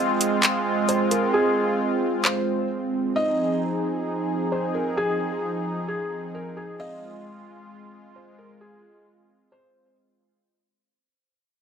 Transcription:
0, 0, Header, 1, 5, 480
1, 0, Start_track
1, 0, Key_signature, -4, "major"
1, 0, Tempo, 454545
1, 1414, Time_signature, 4, 2, 24, 8
1, 12269, End_track
2, 0, Start_track
2, 0, Title_t, "Felt piano"
2, 0, Program_c, 0, 0
2, 936, Note_on_c, 0, 72, 78
2, 1163, Note_off_c, 0, 72, 0
2, 1173, Note_on_c, 0, 70, 80
2, 1402, Note_off_c, 0, 70, 0
2, 1413, Note_on_c, 0, 68, 94
2, 1865, Note_off_c, 0, 68, 0
2, 2373, Note_on_c, 0, 72, 82
2, 2825, Note_off_c, 0, 72, 0
2, 3335, Note_on_c, 0, 75, 101
2, 3786, Note_off_c, 0, 75, 0
2, 4773, Note_on_c, 0, 72, 76
2, 5001, Note_off_c, 0, 72, 0
2, 5013, Note_on_c, 0, 70, 73
2, 5241, Note_off_c, 0, 70, 0
2, 5252, Note_on_c, 0, 68, 103
2, 5704, Note_off_c, 0, 68, 0
2, 6212, Note_on_c, 0, 68, 86
2, 6664, Note_off_c, 0, 68, 0
2, 6701, Note_on_c, 0, 70, 80
2, 6926, Note_off_c, 0, 70, 0
2, 6936, Note_on_c, 0, 68, 79
2, 7163, Note_off_c, 0, 68, 0
2, 7178, Note_on_c, 0, 75, 98
2, 7627, Note_off_c, 0, 75, 0
2, 8616, Note_on_c, 0, 72, 75
2, 8843, Note_off_c, 0, 72, 0
2, 8854, Note_on_c, 0, 70, 79
2, 9082, Note_off_c, 0, 70, 0
2, 9092, Note_on_c, 0, 68, 92
2, 9544, Note_off_c, 0, 68, 0
2, 10053, Note_on_c, 0, 72, 83
2, 10505, Note_off_c, 0, 72, 0
2, 12269, End_track
3, 0, Start_track
3, 0, Title_t, "Kalimba"
3, 0, Program_c, 1, 108
3, 0, Note_on_c, 1, 60, 70
3, 0, Note_on_c, 1, 68, 66
3, 0, Note_on_c, 1, 77, 74
3, 3296, Note_off_c, 1, 60, 0
3, 3337, Note_on_c, 1, 63, 67
3, 7131, Note_off_c, 1, 68, 0
3, 7131, Note_off_c, 1, 77, 0
3, 7137, Note_off_c, 1, 63, 0
3, 7178, Note_on_c, 1, 60, 68
3, 7178, Note_on_c, 1, 68, 61
3, 7178, Note_on_c, 1, 77, 75
3, 10978, Note_off_c, 1, 60, 0
3, 10978, Note_off_c, 1, 68, 0
3, 10978, Note_off_c, 1, 77, 0
3, 12269, End_track
4, 0, Start_track
4, 0, Title_t, "Analog synth pad"
4, 0, Program_c, 2, 89
4, 0, Note_on_c, 2, 56, 84
4, 0, Note_on_c, 2, 60, 74
4, 0, Note_on_c, 2, 65, 91
4, 3296, Note_off_c, 2, 56, 0
4, 3296, Note_off_c, 2, 65, 0
4, 3336, Note_on_c, 2, 53, 82
4, 3336, Note_on_c, 2, 63, 70
4, 3336, Note_on_c, 2, 68, 87
4, 7137, Note_off_c, 2, 53, 0
4, 7137, Note_off_c, 2, 63, 0
4, 7137, Note_off_c, 2, 68, 0
4, 7175, Note_on_c, 2, 65, 87
4, 7176, Note_on_c, 2, 56, 83
4, 10973, Note_off_c, 2, 60, 0
4, 10976, Note_off_c, 2, 56, 0
4, 10976, Note_off_c, 2, 65, 0
4, 12269, End_track
5, 0, Start_track
5, 0, Title_t, "Drums"
5, 219, Note_on_c, 9, 42, 77
5, 325, Note_off_c, 9, 42, 0
5, 457, Note_on_c, 9, 39, 112
5, 457, Note_on_c, 9, 42, 80
5, 562, Note_off_c, 9, 39, 0
5, 562, Note_off_c, 9, 42, 0
5, 936, Note_on_c, 9, 42, 69
5, 1042, Note_off_c, 9, 42, 0
5, 1176, Note_on_c, 9, 42, 72
5, 1281, Note_off_c, 9, 42, 0
5, 2375, Note_on_c, 9, 39, 115
5, 2481, Note_off_c, 9, 39, 0
5, 12269, End_track
0, 0, End_of_file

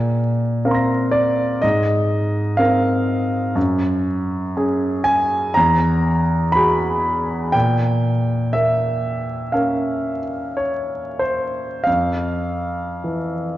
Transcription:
0, 0, Header, 1, 2, 480
1, 0, Start_track
1, 0, Tempo, 963082
1, 1773, Tempo, 996678
1, 1774, Time_signature, 4, 2, 24, 8
1, 4653, Tempo, 1069519
1, 5133, Tempo, 1255230
1, 5613, Tempo, 1162791
1, 6319, End_track
2, 0, Start_track
2, 0, Title_t, "Grand piano"
2, 0, Program_c, 0, 0
2, 0, Control_c, 0, 64, 127
2, 0, Note_on_c, 0, 46, 48
2, 324, Note_on_c, 0, 60, 33
2, 325, Note_on_c, 0, 77, 29
2, 327, Note_on_c, 0, 70, 35
2, 338, Note_on_c, 0, 82, 31
2, 355, Note_on_c, 0, 84, 26
2, 372, Note_on_c, 0, 94, 28
2, 556, Note_on_c, 0, 74, 63
2, 789, Note_off_c, 0, 46, 0
2, 790, Note_off_c, 0, 60, 0
2, 790, Note_off_c, 0, 77, 0
2, 791, Note_off_c, 0, 70, 0
2, 797, Note_off_c, 0, 82, 0
2, 805, Note_off_c, 0, 74, 0
2, 805, Note_off_c, 0, 84, 0
2, 805, Note_on_c, 0, 75, 70
2, 814, Note_off_c, 0, 94, 0
2, 814, Note_on_c, 0, 44, 42
2, 819, Control_c, 0, 64, 0
2, 900, Control_c, 0, 64, 127
2, 1282, Note_on_c, 0, 77, 60
2, 1289, Note_on_c, 0, 60, 38
2, 1290, Note_off_c, 0, 75, 0
2, 1294, Note_on_c, 0, 70, 40
2, 1752, Note_off_c, 0, 60, 0
2, 1754, Note_off_c, 0, 70, 0
2, 1755, Note_off_c, 0, 44, 0
2, 1768, Note_off_c, 0, 77, 0
2, 1771, Note_on_c, 0, 42, 53
2, 1782, Control_c, 0, 64, 0
2, 1874, Control_c, 0, 64, 127
2, 2260, Note_on_c, 0, 61, 34
2, 2261, Note_on_c, 0, 68, 37
2, 2487, Note_on_c, 0, 80, 79
2, 2712, Note_off_c, 0, 42, 0
2, 2715, Note_off_c, 0, 61, 0
2, 2715, Note_off_c, 0, 68, 0
2, 2728, Note_off_c, 0, 80, 0
2, 2728, Note_on_c, 0, 82, 75
2, 2740, Control_c, 0, 64, 0
2, 2742, Note_on_c, 0, 40, 47
2, 2820, Control_c, 0, 64, 127
2, 3201, Note_on_c, 0, 83, 77
2, 3203, Note_off_c, 0, 82, 0
2, 3215, Note_on_c, 0, 66, 34
2, 3215, Note_on_c, 0, 68, 37
2, 3677, Note_off_c, 0, 40, 0
2, 3678, Note_off_c, 0, 66, 0
2, 3678, Note_off_c, 0, 68, 0
2, 3683, Note_on_c, 0, 79, 71
2, 3690, Note_off_c, 0, 83, 0
2, 3690, Note_on_c, 0, 46, 45
2, 3700, Control_c, 0, 64, 0
2, 3795, Control_c, 0, 64, 127
2, 4167, Note_on_c, 0, 76, 63
2, 4169, Note_off_c, 0, 79, 0
2, 4178, Note_on_c, 0, 58, 33
2, 4646, Note_on_c, 0, 77, 49
2, 4650, Note_off_c, 0, 76, 0
2, 4654, Note_on_c, 0, 61, 32
2, 4657, Note_on_c, 0, 70, 34
2, 4936, Note_off_c, 0, 58, 0
2, 5115, Note_on_c, 0, 73, 54
2, 5130, Note_off_c, 0, 77, 0
2, 5358, Note_on_c, 0, 72, 53
2, 5359, Note_off_c, 0, 73, 0
2, 5597, Note_off_c, 0, 46, 0
2, 5598, Note_off_c, 0, 61, 0
2, 5599, Note_off_c, 0, 70, 0
2, 5603, Note_on_c, 0, 77, 59
2, 5608, Note_off_c, 0, 72, 0
2, 5614, Note_on_c, 0, 41, 39
2, 5621, Control_c, 0, 64, 0
2, 5712, Control_c, 0, 64, 127
2, 6100, Note_on_c, 0, 52, 27
2, 6319, Note_off_c, 0, 41, 0
2, 6319, Note_off_c, 0, 52, 0
2, 6319, Note_off_c, 0, 77, 0
2, 6319, End_track
0, 0, End_of_file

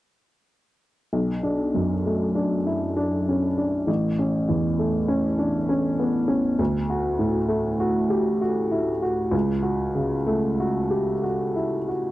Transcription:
0, 0, Header, 1, 2, 480
1, 0, Start_track
1, 0, Key_signature, 2, "minor"
1, 0, Tempo, 930233
1, 582, Time_signature, 3, 2, 24, 8
1, 1536, Tempo, 909091
1, 4896, Tempo, 960000
1, 6283, End_track
2, 0, Start_track
2, 0, Title_t, "Upright piano"
2, 0, Program_c, 0, 0
2, 582, Note_on_c, 0, 35, 32
2, 666, Control_c, 0, 64, 127
2, 739, Note_on_c, 0, 62, 26
2, 901, Note_on_c, 0, 42, 26
2, 995, Note_off_c, 0, 62, 0
2, 1064, Note_on_c, 0, 57, 29
2, 1154, Note_off_c, 0, 42, 0
2, 1213, Note_on_c, 0, 62, 29
2, 1315, Note_off_c, 0, 57, 0
2, 1375, Note_on_c, 0, 64, 24
2, 1469, Note_off_c, 0, 62, 0
2, 1530, Note_on_c, 0, 62, 29
2, 1534, Note_off_c, 0, 64, 0
2, 1700, Note_on_c, 0, 61, 25
2, 1789, Note_off_c, 0, 62, 0
2, 1853, Note_on_c, 0, 62, 28
2, 1857, Note_off_c, 0, 61, 0
2, 1992, Note_off_c, 0, 35, 0
2, 2009, Note_on_c, 0, 33, 36
2, 2012, Note_off_c, 0, 62, 0
2, 2023, Control_c, 0, 64, 0
2, 2116, Control_c, 0, 64, 127
2, 2176, Note_on_c, 0, 61, 28
2, 2334, Note_on_c, 0, 40, 29
2, 2427, Note_off_c, 0, 61, 0
2, 2492, Note_on_c, 0, 57, 33
2, 2586, Note_off_c, 0, 40, 0
2, 2648, Note_on_c, 0, 61, 35
2, 2745, Note_off_c, 0, 57, 0
2, 2808, Note_on_c, 0, 62, 30
2, 2902, Note_off_c, 0, 61, 0
2, 2967, Note_off_c, 0, 62, 0
2, 2969, Note_on_c, 0, 61, 33
2, 3128, Note_on_c, 0, 59, 28
2, 3223, Note_off_c, 0, 61, 0
2, 3279, Note_on_c, 0, 61, 35
2, 3287, Note_off_c, 0, 59, 0
2, 3422, Note_off_c, 0, 33, 0
2, 3442, Note_off_c, 0, 61, 0
2, 3443, Note_on_c, 0, 38, 41
2, 3455, Control_c, 0, 64, 0
2, 3527, Control_c, 0, 64, 127
2, 3606, Note_on_c, 0, 66, 32
2, 3760, Note_on_c, 0, 45, 35
2, 3862, Note_off_c, 0, 66, 0
2, 3916, Note_on_c, 0, 57, 37
2, 4020, Note_off_c, 0, 45, 0
2, 4082, Note_on_c, 0, 66, 38
2, 4179, Note_off_c, 0, 57, 0
2, 4241, Note_on_c, 0, 67, 32
2, 4344, Note_off_c, 0, 66, 0
2, 4406, Note_on_c, 0, 66, 37
2, 4408, Note_off_c, 0, 67, 0
2, 4565, Note_on_c, 0, 64, 29
2, 4666, Note_off_c, 0, 66, 0
2, 4728, Note_on_c, 0, 66, 34
2, 4729, Note_off_c, 0, 64, 0
2, 4871, Note_off_c, 0, 38, 0
2, 4882, Note_on_c, 0, 37, 41
2, 4891, Note_off_c, 0, 66, 0
2, 4902, Control_c, 0, 64, 0
2, 4973, Control_c, 0, 64, 127
2, 5038, Note_on_c, 0, 66, 32
2, 5200, Note_on_c, 0, 49, 31
2, 5294, Note_off_c, 0, 66, 0
2, 5359, Note_on_c, 0, 57, 35
2, 5456, Note_off_c, 0, 49, 0
2, 5525, Note_on_c, 0, 66, 35
2, 5616, Note_off_c, 0, 57, 0
2, 5678, Note_on_c, 0, 67, 26
2, 5780, Note_off_c, 0, 66, 0
2, 5841, Note_on_c, 0, 66, 30
2, 5842, Note_off_c, 0, 67, 0
2, 6004, Note_on_c, 0, 64, 23
2, 6106, Note_off_c, 0, 66, 0
2, 6168, Note_on_c, 0, 66, 26
2, 6171, Note_off_c, 0, 64, 0
2, 6283, Note_off_c, 0, 37, 0
2, 6283, Note_off_c, 0, 66, 0
2, 6283, End_track
0, 0, End_of_file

